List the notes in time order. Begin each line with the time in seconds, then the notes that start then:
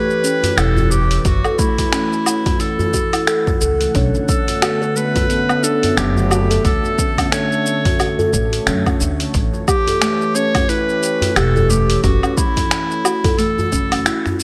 Already playing: E3 A3 G4 A4 B4 C#5
0.10 shaker
0.24 C#4, shaker
0.43 open hi-hat, djembe slap, djembe bass, shaker
0.57 E1 E4 A4, finger snap, open hi-hat, low woodblock, shaker
0.77 djembe bass, shaker
0.91 G4, djembe slap, djembe tone, shaker
1.11 open hi-hat, shaker
1.19 G4
1.25 F#1 F#4, kick, open hi-hat, shaker
1.44 A4, djembe tone, low woodblock, shaker
1.59 A3 E4, kick, shaker
1.78 kick, open hi-hat, djembe slap, djembe tone, shaker
1.83 A3 A4
1.93 C#4, finger snap, open hi-hat, shaker
2.12 shaker
2.26 E4, low woodblock, shaker
2.46 F#5, kick, open hi-hat, djembe slap, djembe tone, djembe bass, shaker
2.60 A4, open hi-hat, djembe slap, shaker
2.79 djembe bass, shaker
2.94 F#4, kick, shaker
3.13 E4, open hi-hat, low woodblock, shaker
3.27 A4, finger snap, open hi-hat, shaker
3.47 kick, djembe bass, shaker
3.61 C#2 A4, shaker
3.81 open hi-hat, shaker
3.95 B1 D3 C#4 D4 C#5, kick, open hi-hat, shaker
4.14 djembe tone, shaker
4.29 A4, kick, shaker
4.46 B3, open hi-hat, djembe tone, shaker
4.62 F#4, finger snap, open hi-hat, low woodblock, shaker
4.82 A4, shaker
4.96 A3 B4, shaker
5.16 kick, open hi-hat, djembe tone, djembe bass, shaker
5.30 B3, open hi-hat, djembe tone, shaker
5.49 B3, low woodblock, shaker
5.63 D4 A4, shaker
5.83 open hi-hat, djembe slap, djembe bass, shaker
5.97 F#1 G4, finger snap, open hi-hat, shaker
6.17 djembe bass, shaker
6.31 F#4, djembe slap, djembe tone, low woodblock, shaker
6.50 A4, open hi-hat, shaker
6.64 D2 A3 A4, kick, open hi-hat, shaker
6.84 djembe tone, shaker
6.98 C#4, kick, shaker
7.18 C#4, kick, open hi-hat, djembe slap, djembe tone, low woodblock, shaker
7.29 D4 C#5, finger snap, open hi-hat, shaker
7.52 shaker
7.66 shaker
7.85 kick, open hi-hat, djembe tone, djembe bass, shaker
7.99 F#4, open hi-hat, djembe slap, low woodblock, shaker
8.19 A4, djembe bass, shaker
8.33 A1 A3, kick, shaker
8.53 open hi-hat, shaker
8.67 F#2 C#4, finger snap, open hi-hat, shaker
8.86 C#4, kick, djembe bass, low woodblock, shaker
9.00 D2 D4, shaker
9.20 open hi-hat, shaker
9.34 A1 E3, kick, open hi-hat, shaker
9.53 djembe tone, shaker
9.68 G4, kick, low woodblock, shaker
9.87 A4, open hi-hat, djembe tone, shaker
10.02 A3, finger snap, open hi-hat, shaker
10.21 shaker
10.35 C#4 C#5, shaker
10.55 C#4 G4, kick, open hi-hat, djembe tone, djembe bass, low woodblock, shaker
10.69 E4 B4, open hi-hat, djembe tone, shaker
10.89 shaker
11.03 shaker
11.22 open hi-hat, djembe slap, djembe bass, shaker
11.36 E1 G4 A4, finger snap, open hi-hat, low woodblock, shaker
11.56 A4, djembe bass, shaker
11.69 A3 G4, djembe slap, djembe tone, shaker
11.90 open hi-hat, shaker
12.03 F#1 C#4 F#4, kick, open hi-hat, shaker
12.23 C#4, djembe tone, low woodblock, shaker
12.37 E4, kick, shaker
12.56 kick, open hi-hat, djembe slap, djembe tone, shaker
12.71 finger snap, open hi-hat, shaker
12.91 shaker
13.05 F#4, low woodblock, shaker
13.24 F#4 A4, kick, open hi-hat, djembe slap, djembe tone, djembe bass, shaker
13.38 A3 A4, open hi-hat, djembe slap, shaker
13.58 djembe bass, shaker
13.72 F#1 C#4, kick, shaker
13.92 C#4, open hi-hat, low woodblock, shaker
14.06 E4, finger snap, open hi-hat, shaker
14.26 finger snap, djembe bass, shaker
14.40 shaker